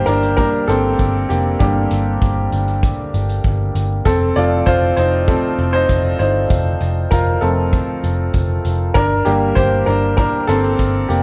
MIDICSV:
0, 0, Header, 1, 4, 480
1, 0, Start_track
1, 0, Key_signature, -2, "minor"
1, 0, Tempo, 612683
1, 1255, Time_signature, 4, 2, 24, 8
1, 8797, End_track
2, 0, Start_track
2, 0, Title_t, "Upright piano"
2, 0, Program_c, 0, 0
2, 0, Control_c, 0, 64, 127
2, 0, Note_on_c, 0, 55, 44
2, 0, Note_on_c, 0, 58, 53
2, 0, Note_on_c, 0, 62, 44
2, 0, Note_on_c, 0, 67, 75
2, 0, Note_on_c, 0, 70, 78
2, 0, Note_on_c, 0, 72, 89
2, 46, Note_off_c, 0, 70, 0
2, 46, Note_on_c, 0, 70, 81
2, 63, Note_off_c, 0, 62, 0
2, 63, Note_on_c, 0, 62, 62
2, 276, Note_off_c, 0, 70, 0
2, 283, Note_off_c, 0, 55, 0
2, 283, Note_off_c, 0, 62, 0
2, 288, Note_on_c, 0, 70, 81
2, 295, Note_on_c, 0, 55, 35
2, 298, Note_off_c, 0, 58, 0
2, 298, Note_on_c, 0, 58, 34
2, 302, Note_on_c, 0, 62, 65
2, 511, Note_off_c, 0, 55, 0
2, 513, Note_off_c, 0, 58, 0
2, 524, Note_off_c, 0, 62, 0
2, 530, Note_on_c, 0, 69, 82
2, 539, Note_off_c, 0, 70, 0
2, 546, Note_on_c, 0, 60, 66
2, 989, Note_off_c, 0, 60, 0
2, 1010, Note_off_c, 0, 67, 0
2, 1010, Note_on_c, 0, 67, 64
2, 1025, Note_on_c, 0, 58, 44
2, 1027, Note_off_c, 0, 69, 0
2, 1237, Note_off_c, 0, 67, 0
2, 1244, Note_off_c, 0, 58, 0
2, 1249, Note_on_c, 0, 67, 69
2, 1255, Note_on_c, 0, 55, 48
2, 1261, Note_on_c, 0, 58, 53
2, 1267, Note_on_c, 0, 62, 58
2, 1944, Note_off_c, 0, 55, 0
2, 1949, Note_off_c, 0, 62, 0
2, 2901, Note_off_c, 0, 67, 0
2, 2909, Note_off_c, 0, 58, 0
2, 3174, Note_on_c, 0, 69, 92
2, 3186, Control_c, 0, 64, 0
2, 3186, Note_on_c, 0, 60, 66
2, 3193, Note_off_c, 0, 72, 0
2, 3300, Control_c, 0, 64, 127
2, 3404, Note_off_c, 0, 60, 0
2, 3415, Note_on_c, 0, 74, 79
2, 3417, Note_on_c, 0, 53, 44
2, 3420, Note_on_c, 0, 57, 45
2, 3422, Note_off_c, 0, 69, 0
2, 3427, Note_on_c, 0, 60, 50
2, 3427, Note_on_c, 0, 65, 65
2, 3644, Note_off_c, 0, 65, 0
2, 3652, Note_on_c, 0, 72, 97
2, 3662, Note_off_c, 0, 74, 0
2, 3664, Note_on_c, 0, 65, 79
2, 3878, Note_off_c, 0, 72, 0
2, 3883, Note_off_c, 0, 65, 0
2, 3889, Note_on_c, 0, 72, 85
2, 3904, Note_on_c, 0, 63, 60
2, 4104, Note_off_c, 0, 53, 0
2, 4106, Note_off_c, 0, 57, 0
2, 4109, Note_off_c, 0, 60, 0
2, 4115, Note_off_c, 0, 72, 0
2, 4123, Note_off_c, 0, 63, 0
2, 4133, Note_on_c, 0, 69, 74
2, 4140, Note_on_c, 0, 53, 40
2, 4141, Note_on_c, 0, 57, 39
2, 4145, Note_on_c, 0, 60, 62
2, 4353, Note_off_c, 0, 53, 0
2, 4354, Note_off_c, 0, 57, 0
2, 4476, Note_off_c, 0, 60, 0
2, 4487, Note_on_c, 0, 72, 101
2, 4503, Note_on_c, 0, 63, 68
2, 4504, Note_off_c, 0, 69, 0
2, 4834, Note_off_c, 0, 63, 0
2, 4838, Note_off_c, 0, 72, 0
2, 4849, Note_on_c, 0, 72, 80
2, 4867, Note_on_c, 0, 63, 58
2, 5549, Note_off_c, 0, 63, 0
2, 5568, Note_on_c, 0, 70, 75
2, 5585, Note_on_c, 0, 65, 57
2, 5593, Note_off_c, 0, 72, 0
2, 5803, Note_off_c, 0, 65, 0
2, 5806, Note_on_c, 0, 69, 73
2, 5811, Note_on_c, 0, 53, 45
2, 5816, Note_on_c, 0, 57, 40
2, 5818, Note_off_c, 0, 70, 0
2, 5820, Note_on_c, 0, 60, 46
2, 6259, Note_off_c, 0, 69, 0
2, 6266, Note_off_c, 0, 60, 0
2, 6501, Note_off_c, 0, 53, 0
2, 6504, Note_off_c, 0, 57, 0
2, 7006, Note_on_c, 0, 70, 95
2, 7022, Note_on_c, 0, 62, 68
2, 7023, Control_c, 0, 64, 0
2, 7169, Control_c, 0, 64, 127
2, 7241, Note_off_c, 0, 62, 0
2, 7247, Note_on_c, 0, 67, 71
2, 7252, Note_on_c, 0, 55, 47
2, 7257, Note_off_c, 0, 70, 0
2, 7257, Note_on_c, 0, 58, 56
2, 7260, Note_on_c, 0, 62, 54
2, 7481, Note_off_c, 0, 58, 0
2, 7484, Note_on_c, 0, 72, 94
2, 7492, Note_off_c, 0, 67, 0
2, 7504, Note_on_c, 0, 67, 67
2, 7572, Note_off_c, 0, 55, 0
2, 7576, Note_off_c, 0, 62, 0
2, 7722, Note_off_c, 0, 67, 0
2, 7726, Note_on_c, 0, 70, 75
2, 7736, Note_off_c, 0, 72, 0
2, 7743, Note_on_c, 0, 62, 54
2, 7955, Note_off_c, 0, 70, 0
2, 7962, Note_off_c, 0, 62, 0
2, 7967, Note_on_c, 0, 70, 81
2, 7985, Note_on_c, 0, 62, 60
2, 8202, Note_off_c, 0, 62, 0
2, 8206, Note_on_c, 0, 69, 93
2, 8217, Note_off_c, 0, 70, 0
2, 8221, Note_on_c, 0, 60, 70
2, 8665, Note_off_c, 0, 60, 0
2, 8684, Note_on_c, 0, 67, 64
2, 8698, Note_on_c, 0, 58, 47
2, 8704, Note_off_c, 0, 69, 0
2, 8739, Note_off_c, 0, 67, 0
2, 8751, Note_off_c, 0, 58, 0
2, 8797, End_track
3, 0, Start_track
3, 0, Title_t, "Picked electric bass"
3, 0, Program_c, 1, 34
3, 55, Note_on_c, 1, 31, 73
3, 351, Note_off_c, 1, 31, 0
3, 535, Note_on_c, 1, 31, 80
3, 732, Note_off_c, 1, 31, 0
3, 778, Note_on_c, 1, 31, 66
3, 974, Note_off_c, 1, 31, 0
3, 1020, Note_on_c, 1, 29, 65
3, 1215, Note_off_c, 1, 29, 0
3, 1258, Note_on_c, 1, 31, 90
3, 1454, Note_off_c, 1, 31, 0
3, 1501, Note_on_c, 1, 31, 78
3, 1695, Note_off_c, 1, 31, 0
3, 1740, Note_on_c, 1, 31, 89
3, 1935, Note_off_c, 1, 31, 0
3, 1978, Note_on_c, 1, 31, 84
3, 2272, Note_off_c, 1, 31, 0
3, 2460, Note_on_c, 1, 31, 82
3, 2654, Note_off_c, 1, 31, 0
3, 2698, Note_on_c, 1, 31, 77
3, 2894, Note_off_c, 1, 31, 0
3, 2937, Note_on_c, 1, 31, 78
3, 3133, Note_off_c, 1, 31, 0
3, 3178, Note_on_c, 1, 29, 99
3, 3373, Note_off_c, 1, 29, 0
3, 3418, Note_on_c, 1, 29, 74
3, 3613, Note_off_c, 1, 29, 0
3, 3657, Note_on_c, 1, 29, 90
3, 3853, Note_off_c, 1, 29, 0
3, 3897, Note_on_c, 1, 29, 87
3, 4191, Note_off_c, 1, 29, 0
3, 4374, Note_on_c, 1, 29, 70
3, 4571, Note_off_c, 1, 29, 0
3, 4616, Note_on_c, 1, 29, 79
3, 4812, Note_off_c, 1, 29, 0
3, 4854, Note_on_c, 1, 31, 86
3, 5051, Note_off_c, 1, 31, 0
3, 5095, Note_on_c, 1, 29, 96
3, 5291, Note_off_c, 1, 29, 0
3, 5334, Note_on_c, 1, 29, 80
3, 5531, Note_off_c, 1, 29, 0
3, 5576, Note_on_c, 1, 29, 89
3, 5772, Note_off_c, 1, 29, 0
3, 5815, Note_on_c, 1, 29, 77
3, 6110, Note_off_c, 1, 29, 0
3, 6294, Note_on_c, 1, 29, 73
3, 6491, Note_off_c, 1, 29, 0
3, 6534, Note_on_c, 1, 29, 75
3, 6731, Note_off_c, 1, 29, 0
3, 6776, Note_on_c, 1, 29, 72
3, 6972, Note_off_c, 1, 29, 0
3, 7015, Note_on_c, 1, 31, 83
3, 7211, Note_off_c, 1, 31, 0
3, 7258, Note_on_c, 1, 31, 69
3, 7453, Note_off_c, 1, 31, 0
3, 7495, Note_on_c, 1, 31, 82
3, 7691, Note_off_c, 1, 31, 0
3, 7735, Note_on_c, 1, 31, 84
3, 8029, Note_off_c, 1, 31, 0
3, 8214, Note_on_c, 1, 31, 79
3, 8411, Note_off_c, 1, 31, 0
3, 8454, Note_on_c, 1, 31, 69
3, 8650, Note_off_c, 1, 31, 0
3, 8692, Note_on_c, 1, 29, 69
3, 8797, Note_off_c, 1, 29, 0
3, 8797, End_track
4, 0, Start_track
4, 0, Title_t, "Drums"
4, 54, Note_on_c, 9, 42, 56
4, 132, Note_off_c, 9, 42, 0
4, 177, Note_on_c, 9, 42, 36
4, 256, Note_off_c, 9, 42, 0
4, 296, Note_on_c, 9, 42, 75
4, 297, Note_on_c, 9, 36, 85
4, 374, Note_off_c, 9, 42, 0
4, 375, Note_off_c, 9, 36, 0
4, 539, Note_on_c, 9, 42, 51
4, 617, Note_off_c, 9, 42, 0
4, 774, Note_on_c, 9, 42, 69
4, 778, Note_on_c, 9, 36, 69
4, 852, Note_off_c, 9, 42, 0
4, 856, Note_off_c, 9, 36, 0
4, 1017, Note_on_c, 9, 42, 62
4, 1096, Note_off_c, 9, 42, 0
4, 1257, Note_on_c, 9, 36, 87
4, 1257, Note_on_c, 9, 42, 85
4, 1335, Note_off_c, 9, 36, 0
4, 1335, Note_off_c, 9, 42, 0
4, 1495, Note_on_c, 9, 42, 67
4, 1573, Note_off_c, 9, 42, 0
4, 1738, Note_on_c, 9, 36, 91
4, 1740, Note_on_c, 9, 42, 80
4, 1817, Note_off_c, 9, 36, 0
4, 1818, Note_off_c, 9, 42, 0
4, 1977, Note_on_c, 9, 42, 58
4, 2055, Note_off_c, 9, 42, 0
4, 2099, Note_on_c, 9, 42, 42
4, 2178, Note_off_c, 9, 42, 0
4, 2218, Note_on_c, 9, 36, 105
4, 2218, Note_on_c, 9, 42, 79
4, 2296, Note_off_c, 9, 42, 0
4, 2297, Note_off_c, 9, 36, 0
4, 2460, Note_on_c, 9, 42, 58
4, 2538, Note_off_c, 9, 42, 0
4, 2579, Note_on_c, 9, 42, 39
4, 2657, Note_off_c, 9, 42, 0
4, 2694, Note_on_c, 9, 42, 67
4, 2698, Note_on_c, 9, 36, 76
4, 2772, Note_off_c, 9, 42, 0
4, 2776, Note_off_c, 9, 36, 0
4, 2939, Note_on_c, 9, 42, 57
4, 3017, Note_off_c, 9, 42, 0
4, 3177, Note_on_c, 9, 36, 92
4, 3178, Note_on_c, 9, 42, 85
4, 3256, Note_off_c, 9, 36, 0
4, 3257, Note_off_c, 9, 42, 0
4, 3414, Note_on_c, 9, 42, 68
4, 3493, Note_off_c, 9, 42, 0
4, 3657, Note_on_c, 9, 36, 94
4, 3659, Note_on_c, 9, 42, 73
4, 3736, Note_off_c, 9, 36, 0
4, 3737, Note_off_c, 9, 42, 0
4, 3893, Note_on_c, 9, 42, 59
4, 3971, Note_off_c, 9, 42, 0
4, 4134, Note_on_c, 9, 42, 75
4, 4136, Note_on_c, 9, 36, 99
4, 4213, Note_off_c, 9, 42, 0
4, 4214, Note_off_c, 9, 36, 0
4, 4375, Note_on_c, 9, 42, 56
4, 4453, Note_off_c, 9, 42, 0
4, 4612, Note_on_c, 9, 42, 68
4, 4616, Note_on_c, 9, 36, 80
4, 4690, Note_off_c, 9, 42, 0
4, 4694, Note_off_c, 9, 36, 0
4, 4856, Note_on_c, 9, 42, 60
4, 4934, Note_off_c, 9, 42, 0
4, 5095, Note_on_c, 9, 36, 101
4, 5095, Note_on_c, 9, 42, 96
4, 5173, Note_off_c, 9, 36, 0
4, 5173, Note_off_c, 9, 42, 0
4, 5331, Note_on_c, 9, 42, 70
4, 5409, Note_off_c, 9, 42, 0
4, 5576, Note_on_c, 9, 36, 102
4, 5577, Note_on_c, 9, 42, 83
4, 5654, Note_off_c, 9, 36, 0
4, 5656, Note_off_c, 9, 42, 0
4, 5812, Note_on_c, 9, 42, 59
4, 5890, Note_off_c, 9, 42, 0
4, 6055, Note_on_c, 9, 36, 89
4, 6055, Note_on_c, 9, 42, 71
4, 6133, Note_off_c, 9, 42, 0
4, 6134, Note_off_c, 9, 36, 0
4, 6296, Note_on_c, 9, 42, 60
4, 6374, Note_off_c, 9, 42, 0
4, 6530, Note_on_c, 9, 42, 70
4, 6535, Note_on_c, 9, 36, 75
4, 6608, Note_off_c, 9, 42, 0
4, 6613, Note_off_c, 9, 36, 0
4, 6774, Note_on_c, 9, 42, 62
4, 6852, Note_off_c, 9, 42, 0
4, 7013, Note_on_c, 9, 36, 98
4, 7014, Note_on_c, 9, 42, 87
4, 7092, Note_off_c, 9, 36, 0
4, 7092, Note_off_c, 9, 42, 0
4, 7250, Note_on_c, 9, 42, 68
4, 7328, Note_off_c, 9, 42, 0
4, 7495, Note_on_c, 9, 36, 100
4, 7497, Note_on_c, 9, 42, 76
4, 7573, Note_off_c, 9, 36, 0
4, 7575, Note_off_c, 9, 42, 0
4, 7731, Note_on_c, 9, 42, 52
4, 7810, Note_off_c, 9, 42, 0
4, 7974, Note_on_c, 9, 36, 94
4, 7974, Note_on_c, 9, 42, 76
4, 8052, Note_off_c, 9, 36, 0
4, 8053, Note_off_c, 9, 42, 0
4, 8215, Note_on_c, 9, 42, 57
4, 8293, Note_off_c, 9, 42, 0
4, 8335, Note_on_c, 9, 42, 38
4, 8413, Note_off_c, 9, 42, 0
4, 8452, Note_on_c, 9, 42, 75
4, 8454, Note_on_c, 9, 36, 67
4, 8530, Note_off_c, 9, 42, 0
4, 8533, Note_off_c, 9, 36, 0
4, 8695, Note_on_c, 9, 42, 62
4, 8773, Note_off_c, 9, 42, 0
4, 8797, End_track
0, 0, End_of_file